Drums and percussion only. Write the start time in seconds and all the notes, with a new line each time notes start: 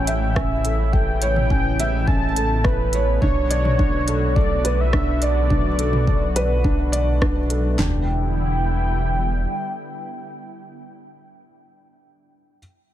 0.07 closed hi-hat
0.36 kick, cross-stick
0.65 closed hi-hat
0.93 kick
1.22 closed hi-hat
1.36 mid tom
1.50 kick
1.80 closed hi-hat
2.08 kick
2.36 closed hi-hat
2.64 kick, cross-stick
2.93 closed hi-hat
3.22 kick, mid tom
3.51 closed hi-hat
3.65 mid tom
3.79 kick
4.08 closed hi-hat
4.36 kick
4.65 closed hi-hat
4.93 kick, cross-stick
5.22 closed hi-hat
5.50 kick, mid tom
5.79 closed hi-hat
5.93 mid tom
6.07 kick
6.36 closed hi-hat
6.64 kick
6.93 closed hi-hat
7.22 kick, cross-stick
7.50 closed hi-hat
7.79 snare, clap, floor tom